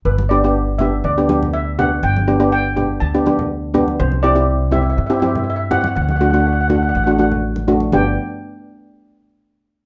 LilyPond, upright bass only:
\new Staff \with { instrumentName = "Upright bass" } { \clef bass \time 4/4 \key g \major \tempo 4 = 122 g,,2 d,2 | g,,2 d,2 | c,2 g,2 | d,2 a,,2 |
g,,8 r2. r8 | }